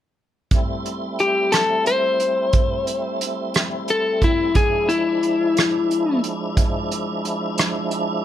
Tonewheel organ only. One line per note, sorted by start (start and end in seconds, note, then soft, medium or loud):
0.53 4.52 G3 soft
0.53 4.52 A3 soft
0.53 4.53 C4 soft
0.53 4.52 E4 soft
4.54 8.25 F3 soft
4.54 8.25 G#3 soft
4.54 8.25 D4 soft
4.54 8.25 E4 soft